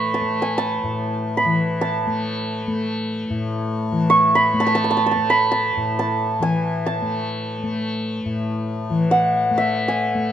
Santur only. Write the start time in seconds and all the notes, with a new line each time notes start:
Already playing: A4 B5 C#6
0.14 A5
0.42 G#5
0.58 A5
1.37 B5
1.81 A5
4.10 C#6
4.35 B5
4.60 A5
4.67 A5
4.75 A5
4.84 A5
4.91 A5
4.97 A5
5.06 A5
5.11 A5
5.30 B5
5.52 A5
5.99 A5
6.42 G#5
6.86 A5
9.11 F#5
9.58 E5
9.88 G#5